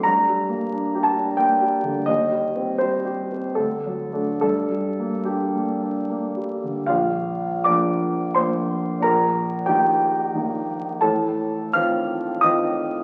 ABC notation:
X:1
M:3/4
L:1/8
Q:1/4=87
K:Gm
V:1 name="Grand piano"
b3 a g2 | e2 c2 A2 | A2 G3 z | [K:Bb] [Ff]2 [dd']2 [cc']2 |
[Bb]2 [Gg]4 | [Aa]2 [ff']2 [ee']2 |]
V:2 name="Grand piano"
(3G,, G, B, (3D G D (3B, G, D, | (3E,, G, C (3G, G C (3D,, ^F, [A,D] | (3G,, G, B, (3D B, D (3B, G, D, | [K:Bb] [B,,,B,,]2 [F,B,D]2 [F,B,D]2 |
[B,,,B,,]2 [E,B,E]2 [E,B,E]2 | [A,,,A,,]2 [E,CF]2 [E,CF]2 |]